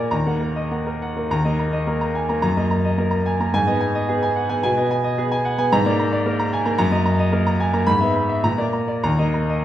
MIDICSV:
0, 0, Header, 1, 2, 480
1, 0, Start_track
1, 0, Key_signature, -6, "minor"
1, 0, Tempo, 603015
1, 83, Time_signature, 2, 2, 24, 8
1, 1042, Tempo, 561272
1, 2002, Tempo, 551978
1, 3922, Tempo, 541516
1, 7282, Tempo, 608519
1, 8242, End_track
2, 0, Start_track
2, 0, Title_t, "Grand piano"
2, 0, Program_c, 0, 0
2, 0, Control_c, 0, 64, 127
2, 0, Note_on_c, 0, 46, 61
2, 0, Note_on_c, 0, 58, 48
2, 0, Note_on_c, 0, 70, 53
2, 0, Note_on_c, 0, 74, 51
2, 0, Note_on_c, 0, 80, 56
2, 0, Note_on_c, 0, 82, 73
2, 83, Note_off_c, 0, 74, 0
2, 89, Note_off_c, 0, 82, 0
2, 89, Note_on_c, 0, 82, 69
2, 90, Note_on_c, 0, 39, 53
2, 100, Control_c, 0, 64, 0
2, 104, Note_off_c, 0, 80, 0
2, 105, Note_off_c, 0, 58, 0
2, 107, Note_off_c, 0, 70, 0
2, 108, Note_off_c, 0, 46, 0
2, 210, Note_on_c, 0, 58, 46
2, 210, Note_on_c, 0, 78, 50
2, 238, Control_c, 0, 64, 127
2, 281, Note_off_c, 0, 82, 0
2, 325, Note_on_c, 0, 70, 41
2, 402, Note_off_c, 0, 58, 0
2, 402, Note_off_c, 0, 78, 0
2, 447, Note_on_c, 0, 75, 49
2, 519, Note_off_c, 0, 70, 0
2, 568, Note_on_c, 0, 58, 37
2, 568, Note_on_c, 0, 78, 40
2, 640, Note_off_c, 0, 75, 0
2, 690, Note_on_c, 0, 70, 46
2, 761, Note_off_c, 0, 58, 0
2, 761, Note_off_c, 0, 78, 0
2, 813, Note_on_c, 0, 78, 50
2, 882, Note_off_c, 0, 70, 0
2, 928, Note_on_c, 0, 70, 40
2, 929, Note_on_c, 0, 58, 39
2, 999, Note_off_c, 0, 78, 0
2, 1017, Note_off_c, 0, 39, 0
2, 1040, Note_on_c, 0, 39, 62
2, 1042, Note_off_c, 0, 70, 0
2, 1043, Note_off_c, 0, 58, 0
2, 1044, Note_on_c, 0, 82, 78
2, 1058, Control_c, 0, 64, 0
2, 1161, Note_on_c, 0, 75, 52
2, 1163, Note_on_c, 0, 58, 48
2, 1221, Control_c, 0, 64, 127
2, 1236, Note_off_c, 0, 82, 0
2, 1286, Note_on_c, 0, 82, 55
2, 1355, Note_off_c, 0, 75, 0
2, 1356, Note_off_c, 0, 58, 0
2, 1401, Note_on_c, 0, 75, 55
2, 1477, Note_off_c, 0, 82, 0
2, 1521, Note_on_c, 0, 58, 47
2, 1523, Note_on_c, 0, 70, 50
2, 1595, Note_off_c, 0, 75, 0
2, 1642, Note_on_c, 0, 82, 57
2, 1715, Note_off_c, 0, 58, 0
2, 1716, Note_off_c, 0, 70, 0
2, 1762, Note_on_c, 0, 80, 47
2, 1835, Note_off_c, 0, 82, 0
2, 1882, Note_off_c, 0, 80, 0
2, 1883, Note_on_c, 0, 82, 54
2, 1885, Note_on_c, 0, 58, 47
2, 1972, Note_off_c, 0, 39, 0
2, 1981, Note_off_c, 0, 82, 0
2, 1994, Note_on_c, 0, 82, 78
2, 1995, Note_on_c, 0, 42, 67
2, 2003, Note_off_c, 0, 58, 0
2, 2020, Control_c, 0, 64, 0
2, 2122, Note_on_c, 0, 75, 53
2, 2123, Note_on_c, 0, 58, 50
2, 2137, Control_c, 0, 64, 127
2, 2191, Note_off_c, 0, 82, 0
2, 2242, Note_on_c, 0, 82, 56
2, 2315, Note_off_c, 0, 58, 0
2, 2315, Note_off_c, 0, 75, 0
2, 2363, Note_on_c, 0, 75, 57
2, 2435, Note_off_c, 0, 82, 0
2, 2477, Note_on_c, 0, 58, 50
2, 2479, Note_on_c, 0, 70, 54
2, 2556, Note_off_c, 0, 75, 0
2, 2591, Note_on_c, 0, 82, 59
2, 2674, Note_off_c, 0, 58, 0
2, 2675, Note_off_c, 0, 70, 0
2, 2721, Note_on_c, 0, 80, 53
2, 2791, Note_off_c, 0, 82, 0
2, 2844, Note_off_c, 0, 80, 0
2, 2846, Note_on_c, 0, 58, 51
2, 2848, Note_on_c, 0, 82, 55
2, 2933, Note_off_c, 0, 42, 0
2, 2964, Note_on_c, 0, 44, 74
2, 2964, Note_on_c, 0, 80, 88
2, 2965, Note_off_c, 0, 58, 0
2, 2966, Note_off_c, 0, 82, 0
2, 2981, Control_c, 0, 64, 0
2, 3079, Note_on_c, 0, 75, 57
2, 3081, Note_on_c, 0, 59, 56
2, 3114, Control_c, 0, 64, 127
2, 3156, Note_off_c, 0, 80, 0
2, 3197, Note_on_c, 0, 80, 56
2, 3275, Note_off_c, 0, 59, 0
2, 3275, Note_off_c, 0, 75, 0
2, 3324, Note_on_c, 0, 75, 60
2, 3394, Note_off_c, 0, 80, 0
2, 3442, Note_on_c, 0, 68, 59
2, 3445, Note_on_c, 0, 59, 54
2, 3518, Note_off_c, 0, 75, 0
2, 3562, Note_on_c, 0, 80, 61
2, 3636, Note_off_c, 0, 68, 0
2, 3638, Note_off_c, 0, 59, 0
2, 3679, Note_on_c, 0, 78, 51
2, 3755, Note_off_c, 0, 80, 0
2, 3794, Note_on_c, 0, 59, 56
2, 3795, Note_on_c, 0, 80, 66
2, 3801, Note_off_c, 0, 78, 0
2, 3893, Note_off_c, 0, 44, 0
2, 3903, Note_off_c, 0, 80, 0
2, 3916, Note_on_c, 0, 80, 82
2, 3917, Note_off_c, 0, 59, 0
2, 3918, Note_on_c, 0, 47, 73
2, 3937, Control_c, 0, 64, 0
2, 4039, Note_on_c, 0, 75, 55
2, 4040, Note_on_c, 0, 59, 53
2, 4084, Control_c, 0, 64, 127
2, 4110, Note_off_c, 0, 80, 0
2, 4161, Note_on_c, 0, 80, 62
2, 4232, Note_off_c, 0, 59, 0
2, 4232, Note_off_c, 0, 75, 0
2, 4279, Note_on_c, 0, 75, 64
2, 4352, Note_off_c, 0, 80, 0
2, 4402, Note_on_c, 0, 59, 56
2, 4403, Note_on_c, 0, 68, 62
2, 4471, Note_off_c, 0, 75, 0
2, 4522, Note_on_c, 0, 80, 69
2, 4593, Note_off_c, 0, 59, 0
2, 4594, Note_off_c, 0, 68, 0
2, 4639, Note_on_c, 0, 78, 60
2, 4713, Note_off_c, 0, 80, 0
2, 4759, Note_on_c, 0, 59, 58
2, 4759, Note_on_c, 0, 80, 70
2, 4760, Note_off_c, 0, 78, 0
2, 4850, Note_off_c, 0, 47, 0
2, 4879, Note_off_c, 0, 59, 0
2, 4880, Note_off_c, 0, 80, 0
2, 4883, Note_on_c, 0, 44, 82
2, 4883, Note_on_c, 0, 82, 96
2, 4896, Control_c, 0, 64, 0
2, 5003, Note_on_c, 0, 58, 55
2, 5004, Note_on_c, 0, 74, 58
2, 5029, Control_c, 0, 64, 127
2, 5072, Note_off_c, 0, 82, 0
2, 5124, Note_on_c, 0, 82, 65
2, 5191, Note_off_c, 0, 58, 0
2, 5192, Note_off_c, 0, 74, 0
2, 5240, Note_on_c, 0, 74, 67
2, 5311, Note_off_c, 0, 82, 0
2, 5358, Note_on_c, 0, 70, 63
2, 5359, Note_on_c, 0, 58, 58
2, 5429, Note_off_c, 0, 74, 0
2, 5477, Note_on_c, 0, 82, 70
2, 5547, Note_off_c, 0, 58, 0
2, 5547, Note_off_c, 0, 70, 0
2, 5598, Note_on_c, 0, 80, 59
2, 5666, Note_off_c, 0, 82, 0
2, 5708, Note_on_c, 0, 82, 62
2, 5712, Note_on_c, 0, 58, 60
2, 5714, Note_off_c, 0, 80, 0
2, 5802, Note_off_c, 0, 44, 0
2, 5809, Note_off_c, 0, 82, 0
2, 5823, Note_on_c, 0, 82, 94
2, 5825, Note_on_c, 0, 42, 84
2, 5830, Note_off_c, 0, 58, 0
2, 5846, Control_c, 0, 64, 0
2, 5939, Note_on_c, 0, 58, 52
2, 5939, Note_on_c, 0, 75, 66
2, 5990, Control_c, 0, 64, 127
2, 6015, Note_off_c, 0, 82, 0
2, 6063, Note_on_c, 0, 82, 64
2, 6133, Note_off_c, 0, 58, 0
2, 6133, Note_off_c, 0, 75, 0
2, 6186, Note_on_c, 0, 75, 69
2, 6255, Note_off_c, 0, 82, 0
2, 6301, Note_on_c, 0, 70, 63
2, 6303, Note_on_c, 0, 58, 59
2, 6377, Note_off_c, 0, 75, 0
2, 6427, Note_on_c, 0, 82, 71
2, 6495, Note_off_c, 0, 58, 0
2, 6495, Note_off_c, 0, 70, 0
2, 6546, Note_on_c, 0, 80, 58
2, 6618, Note_off_c, 0, 82, 0
2, 6666, Note_off_c, 0, 80, 0
2, 6666, Note_on_c, 0, 58, 58
2, 6666, Note_on_c, 0, 82, 60
2, 6754, Note_off_c, 0, 42, 0
2, 6781, Note_on_c, 0, 83, 96
2, 6785, Note_on_c, 0, 44, 75
2, 6786, Note_off_c, 0, 58, 0
2, 6786, Note_off_c, 0, 82, 0
2, 6802, Control_c, 0, 64, 0
2, 6906, Note_on_c, 0, 76, 55
2, 6910, Note_on_c, 0, 59, 57
2, 6949, Control_c, 0, 64, 127
2, 6979, Note_off_c, 0, 83, 0
2, 7036, Note_on_c, 0, 83, 57
2, 7104, Note_off_c, 0, 76, 0
2, 7106, Note_off_c, 0, 59, 0
2, 7160, Note_on_c, 0, 76, 61
2, 7234, Note_off_c, 0, 83, 0
2, 7267, Note_off_c, 0, 44, 0
2, 7284, Note_off_c, 0, 76, 0
2, 7285, Note_on_c, 0, 46, 60
2, 7289, Note_on_c, 0, 82, 82
2, 7299, Control_c, 0, 64, 0
2, 7400, Note_on_c, 0, 58, 50
2, 7401, Note_on_c, 0, 74, 57
2, 7425, Control_c, 0, 64, 127
2, 7471, Note_off_c, 0, 82, 0
2, 7519, Note_on_c, 0, 82, 61
2, 7589, Note_off_c, 0, 58, 0
2, 7590, Note_off_c, 0, 74, 0
2, 7636, Note_on_c, 0, 74, 53
2, 7711, Note_off_c, 0, 82, 0
2, 7746, Note_off_c, 0, 46, 0
2, 7759, Note_off_c, 0, 74, 0
2, 7759, Note_on_c, 0, 39, 67
2, 7759, Note_on_c, 0, 82, 83
2, 7777, Control_c, 0, 64, 0
2, 7879, Note_on_c, 0, 75, 56
2, 7882, Note_on_c, 0, 58, 49
2, 7898, Control_c, 0, 64, 127
2, 7955, Note_off_c, 0, 82, 0
2, 8000, Note_on_c, 0, 82, 52
2, 8074, Note_off_c, 0, 75, 0
2, 8075, Note_off_c, 0, 58, 0
2, 8123, Note_on_c, 0, 75, 58
2, 8193, Note_off_c, 0, 82, 0
2, 8242, Note_off_c, 0, 39, 0
2, 8242, Note_off_c, 0, 75, 0
2, 8242, End_track
0, 0, End_of_file